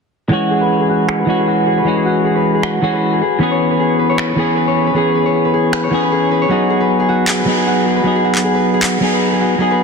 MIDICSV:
0, 0, Header, 1, 4, 480
1, 0, Start_track
1, 0, Tempo, 387097
1, 386, Time_signature, 4, 2, 24, 8
1, 12195, End_track
2, 0, Start_track
2, 0, Title_t, "Harp"
2, 0, Program_c, 0, 46
2, 385, Note_on_c, 0, 66, 80
2, 626, Note_on_c, 0, 68, 66
2, 757, Note_on_c, 0, 71, 67
2, 993, Note_off_c, 0, 68, 0
2, 998, Note_on_c, 0, 68, 69
2, 1102, Note_off_c, 0, 66, 0
2, 1107, Note_on_c, 0, 66, 68
2, 1341, Note_off_c, 0, 68, 0
2, 1346, Note_on_c, 0, 68, 73
2, 1473, Note_off_c, 0, 71, 0
2, 1478, Note_on_c, 0, 71, 72
2, 1713, Note_off_c, 0, 68, 0
2, 1718, Note_on_c, 0, 68, 71
2, 1822, Note_off_c, 0, 66, 0
2, 1827, Note_on_c, 0, 66, 75
2, 2061, Note_off_c, 0, 68, 0
2, 2066, Note_on_c, 0, 68, 74
2, 2192, Note_off_c, 0, 71, 0
2, 2197, Note_on_c, 0, 71, 73
2, 2432, Note_off_c, 0, 68, 0
2, 2437, Note_on_c, 0, 68, 71
2, 2540, Note_off_c, 0, 66, 0
2, 2545, Note_on_c, 0, 66, 69
2, 2781, Note_off_c, 0, 68, 0
2, 2786, Note_on_c, 0, 68, 74
2, 2911, Note_off_c, 0, 71, 0
2, 2916, Note_on_c, 0, 71, 70
2, 3150, Note_off_c, 0, 68, 0
2, 3155, Note_on_c, 0, 68, 66
2, 3260, Note_off_c, 0, 66, 0
2, 3265, Note_on_c, 0, 66, 74
2, 3500, Note_off_c, 0, 68, 0
2, 3505, Note_on_c, 0, 68, 73
2, 3630, Note_off_c, 0, 71, 0
2, 3635, Note_on_c, 0, 71, 69
2, 3871, Note_off_c, 0, 68, 0
2, 3876, Note_on_c, 0, 68, 68
2, 3981, Note_off_c, 0, 68, 0
2, 3986, Note_on_c, 0, 68, 75
2, 4220, Note_off_c, 0, 71, 0
2, 4225, Note_on_c, 0, 71, 78
2, 4355, Note_on_c, 0, 73, 72
2, 4592, Note_off_c, 0, 71, 0
2, 4597, Note_on_c, 0, 71, 67
2, 4701, Note_off_c, 0, 68, 0
2, 4706, Note_on_c, 0, 68, 71
2, 4941, Note_off_c, 0, 71, 0
2, 4946, Note_on_c, 0, 71, 74
2, 5071, Note_off_c, 0, 73, 0
2, 5076, Note_on_c, 0, 73, 72
2, 5311, Note_off_c, 0, 71, 0
2, 5316, Note_on_c, 0, 71, 73
2, 5420, Note_off_c, 0, 68, 0
2, 5425, Note_on_c, 0, 68, 76
2, 5661, Note_off_c, 0, 71, 0
2, 5666, Note_on_c, 0, 71, 77
2, 5792, Note_off_c, 0, 73, 0
2, 5797, Note_on_c, 0, 73, 69
2, 6032, Note_off_c, 0, 71, 0
2, 6037, Note_on_c, 0, 71, 73
2, 6140, Note_off_c, 0, 68, 0
2, 6145, Note_on_c, 0, 68, 80
2, 6287, Note_off_c, 0, 66, 0
2, 6380, Note_off_c, 0, 71, 0
2, 6385, Note_on_c, 0, 71, 68
2, 6512, Note_off_c, 0, 73, 0
2, 6517, Note_on_c, 0, 73, 70
2, 6751, Note_off_c, 0, 71, 0
2, 6756, Note_on_c, 0, 71, 70
2, 6860, Note_off_c, 0, 68, 0
2, 6865, Note_on_c, 0, 68, 76
2, 7102, Note_off_c, 0, 71, 0
2, 7232, Note_off_c, 0, 73, 0
2, 7237, Note_on_c, 0, 73, 71
2, 7477, Note_on_c, 0, 71, 68
2, 7580, Note_off_c, 0, 68, 0
2, 7585, Note_on_c, 0, 68, 79
2, 7821, Note_off_c, 0, 71, 0
2, 7826, Note_on_c, 0, 71, 72
2, 7952, Note_off_c, 0, 73, 0
2, 7957, Note_on_c, 0, 73, 72
2, 8064, Note_on_c, 0, 66, 82
2, 8300, Note_off_c, 0, 68, 0
2, 8305, Note_on_c, 0, 68, 68
2, 8431, Note_off_c, 0, 71, 0
2, 8435, Note_on_c, 0, 71, 69
2, 8671, Note_off_c, 0, 68, 0
2, 8676, Note_on_c, 0, 68, 68
2, 8781, Note_off_c, 0, 66, 0
2, 8786, Note_on_c, 0, 66, 73
2, 9020, Note_off_c, 0, 68, 0
2, 9025, Note_on_c, 0, 68, 75
2, 9151, Note_off_c, 0, 71, 0
2, 9156, Note_on_c, 0, 71, 73
2, 9391, Note_off_c, 0, 68, 0
2, 9396, Note_on_c, 0, 68, 72
2, 9500, Note_off_c, 0, 66, 0
2, 9505, Note_on_c, 0, 66, 74
2, 9740, Note_off_c, 0, 68, 0
2, 9745, Note_on_c, 0, 68, 69
2, 9870, Note_off_c, 0, 71, 0
2, 9875, Note_on_c, 0, 71, 72
2, 10110, Note_off_c, 0, 68, 0
2, 10115, Note_on_c, 0, 68, 72
2, 10219, Note_off_c, 0, 66, 0
2, 10224, Note_on_c, 0, 66, 73
2, 10328, Note_off_c, 0, 73, 0
2, 10461, Note_off_c, 0, 68, 0
2, 10466, Note_on_c, 0, 68, 75
2, 10592, Note_off_c, 0, 71, 0
2, 10597, Note_on_c, 0, 71, 68
2, 10831, Note_off_c, 0, 68, 0
2, 10836, Note_on_c, 0, 68, 71
2, 10940, Note_off_c, 0, 66, 0
2, 10945, Note_on_c, 0, 66, 77
2, 11180, Note_off_c, 0, 68, 0
2, 11185, Note_on_c, 0, 68, 73
2, 11312, Note_off_c, 0, 71, 0
2, 11317, Note_on_c, 0, 71, 68
2, 11551, Note_off_c, 0, 68, 0
2, 11556, Note_on_c, 0, 68, 72
2, 11660, Note_off_c, 0, 66, 0
2, 11665, Note_on_c, 0, 66, 73
2, 11901, Note_off_c, 0, 68, 0
2, 11906, Note_on_c, 0, 68, 83
2, 12032, Note_off_c, 0, 71, 0
2, 12037, Note_on_c, 0, 71, 73
2, 12195, Note_off_c, 0, 66, 0
2, 12195, Note_off_c, 0, 68, 0
2, 12195, Note_off_c, 0, 71, 0
2, 12195, End_track
3, 0, Start_track
3, 0, Title_t, "Clean electric guitar"
3, 0, Program_c, 1, 27
3, 363, Note_on_c, 1, 52, 70
3, 379, Note_on_c, 1, 56, 61
3, 396, Note_on_c, 1, 61, 64
3, 412, Note_on_c, 1, 66, 75
3, 1548, Note_off_c, 1, 52, 0
3, 1557, Note_off_c, 1, 56, 0
3, 1561, Note_on_c, 1, 52, 77
3, 1565, Note_off_c, 1, 61, 0
3, 1573, Note_off_c, 1, 66, 0
3, 1578, Note_on_c, 1, 56, 70
3, 1596, Note_on_c, 1, 61, 70
3, 1611, Note_on_c, 1, 66, 84
3, 2267, Note_off_c, 1, 52, 0
3, 2276, Note_off_c, 1, 56, 0
3, 2282, Note_on_c, 1, 52, 68
3, 2285, Note_off_c, 1, 61, 0
3, 2293, Note_off_c, 1, 66, 0
3, 2299, Note_on_c, 1, 56, 64
3, 2315, Note_on_c, 1, 61, 61
3, 2332, Note_on_c, 1, 66, 74
3, 3468, Note_off_c, 1, 52, 0
3, 3476, Note_off_c, 1, 56, 0
3, 3485, Note_off_c, 1, 61, 0
3, 3493, Note_off_c, 1, 66, 0
3, 3493, Note_on_c, 1, 52, 75
3, 3502, Note_on_c, 1, 56, 73
3, 3510, Note_on_c, 1, 61, 73
3, 3518, Note_on_c, 1, 66, 86
3, 3967, Note_off_c, 1, 52, 0
3, 3971, Note_off_c, 1, 56, 0
3, 3975, Note_off_c, 1, 61, 0
3, 3979, Note_off_c, 1, 66, 0
3, 4201, Note_on_c, 1, 52, 70
3, 4217, Note_on_c, 1, 59, 64
3, 4234, Note_on_c, 1, 61, 68
3, 4251, Note_on_c, 1, 68, 76
3, 5387, Note_off_c, 1, 52, 0
3, 5396, Note_off_c, 1, 59, 0
3, 5402, Note_on_c, 1, 52, 79
3, 5404, Note_off_c, 1, 61, 0
3, 5412, Note_off_c, 1, 68, 0
3, 5419, Note_on_c, 1, 59, 71
3, 5435, Note_on_c, 1, 61, 74
3, 5452, Note_on_c, 1, 68, 89
3, 6108, Note_off_c, 1, 52, 0
3, 6117, Note_off_c, 1, 59, 0
3, 6121, Note_on_c, 1, 52, 67
3, 6124, Note_off_c, 1, 61, 0
3, 6133, Note_off_c, 1, 68, 0
3, 6137, Note_on_c, 1, 59, 63
3, 6154, Note_on_c, 1, 61, 64
3, 6171, Note_on_c, 1, 68, 77
3, 7308, Note_off_c, 1, 52, 0
3, 7316, Note_off_c, 1, 59, 0
3, 7321, Note_on_c, 1, 52, 77
3, 7324, Note_off_c, 1, 61, 0
3, 7332, Note_off_c, 1, 68, 0
3, 7338, Note_on_c, 1, 59, 70
3, 7354, Note_on_c, 1, 61, 68
3, 7371, Note_on_c, 1, 68, 89
3, 8027, Note_off_c, 1, 52, 0
3, 8036, Note_off_c, 1, 59, 0
3, 8042, Note_on_c, 1, 54, 70
3, 8044, Note_off_c, 1, 61, 0
3, 8052, Note_off_c, 1, 68, 0
3, 8058, Note_on_c, 1, 59, 62
3, 8075, Note_on_c, 1, 63, 67
3, 8091, Note_on_c, 1, 68, 77
3, 9228, Note_off_c, 1, 54, 0
3, 9236, Note_off_c, 1, 59, 0
3, 9242, Note_on_c, 1, 54, 80
3, 9244, Note_off_c, 1, 63, 0
3, 9253, Note_off_c, 1, 68, 0
3, 9259, Note_on_c, 1, 59, 70
3, 9276, Note_on_c, 1, 63, 73
3, 9291, Note_on_c, 1, 68, 84
3, 9948, Note_off_c, 1, 54, 0
3, 9956, Note_off_c, 1, 59, 0
3, 9962, Note_on_c, 1, 54, 71
3, 9965, Note_off_c, 1, 63, 0
3, 9972, Note_off_c, 1, 68, 0
3, 9978, Note_on_c, 1, 59, 64
3, 9995, Note_on_c, 1, 63, 63
3, 10011, Note_on_c, 1, 68, 79
3, 11148, Note_off_c, 1, 54, 0
3, 11156, Note_off_c, 1, 59, 0
3, 11161, Note_on_c, 1, 54, 80
3, 11164, Note_off_c, 1, 63, 0
3, 11173, Note_off_c, 1, 68, 0
3, 11179, Note_on_c, 1, 59, 74
3, 11195, Note_on_c, 1, 63, 70
3, 11212, Note_on_c, 1, 68, 87
3, 11868, Note_off_c, 1, 54, 0
3, 11876, Note_off_c, 1, 59, 0
3, 11880, Note_on_c, 1, 54, 72
3, 11884, Note_off_c, 1, 63, 0
3, 11893, Note_off_c, 1, 68, 0
3, 11897, Note_on_c, 1, 59, 62
3, 11914, Note_on_c, 1, 63, 64
3, 11931, Note_on_c, 1, 68, 78
3, 12195, Note_off_c, 1, 54, 0
3, 12195, Note_off_c, 1, 59, 0
3, 12195, Note_off_c, 1, 63, 0
3, 12195, Note_off_c, 1, 68, 0
3, 12195, End_track
4, 0, Start_track
4, 0, Title_t, "Drums"
4, 1346, Note_on_c, 9, 26, 84
4, 1470, Note_off_c, 9, 26, 0
4, 3266, Note_on_c, 9, 26, 88
4, 3390, Note_off_c, 9, 26, 0
4, 5186, Note_on_c, 9, 26, 88
4, 5310, Note_off_c, 9, 26, 0
4, 7106, Note_on_c, 9, 26, 78
4, 7230, Note_off_c, 9, 26, 0
4, 9024, Note_on_c, 9, 26, 84
4, 9024, Note_on_c, 9, 39, 109
4, 9148, Note_off_c, 9, 26, 0
4, 9148, Note_off_c, 9, 39, 0
4, 10356, Note_on_c, 9, 39, 33
4, 10480, Note_off_c, 9, 39, 0
4, 10945, Note_on_c, 9, 26, 84
4, 10945, Note_on_c, 9, 39, 103
4, 11069, Note_off_c, 9, 26, 0
4, 11069, Note_off_c, 9, 39, 0
4, 12195, End_track
0, 0, End_of_file